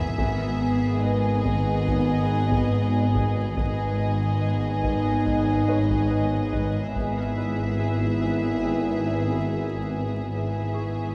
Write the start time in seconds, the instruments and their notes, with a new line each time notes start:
Already playing: synth drone G#1, double bass section G#1, cello section G#2, french horn section E3 B3, viola section B3, synth texture B3 G#5, violin section G#4 E5, felt piano G#4 A#4
0.17 synth drone G#1, double bass section G#1, cello section G#2, french horn section D#3 B3, synth texture B3 G#5 D#6, viola section B3, violin section G#4, taiko
1.02 felt piano B4, violin section D#5
1.45 taiko
1.88 taiko
2.52 taiko
3.15 taiko
3.55 double bass section G#1, synth drone G#1, cello section G#2, french horn section B3 D#4, viola section B3, violin section G#4 D#5, synth texture B4 D#5 G#5, taiko
4.84 taiko
5.26 taiko
5.68 felt piano C#5
5.90 taiko
6.53 taiko
6.94 synth drone G#1, double bass section G#1, cello section G#2, viola section B3, french horn section B3 E4, synth texture G#4 B4 E5, violin section G#4 E5, taiko
8.65 felt piano G5
10.31 synth drone G#1, double bass section G#1, cello section G#2, french horn section B3 E4, viola section B3, synth texture G#4 B4 E5, violin section G#4 E5
10.74 felt piano C#6